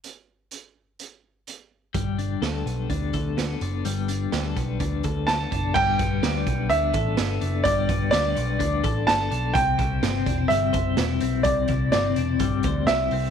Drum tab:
CC |--------|--------|--------|x-------|
HH |x-x-x-x-|xxxxxxxx|xxxxxxxx|-xxxxxxx|
SD |--------|--o---o-|--o---o-|--o---o-|
BD |--------|o---oo--|---ooo-o|oo-o-o--|

CC |--------|--------|--------|
HH |xxxxxxxx|xxxxxxxx|xxxxxxxo|
SD |--o---o-|--o---o-|--o---o-|
BD |oo--oo--|oo-o-o--|oo--oo--|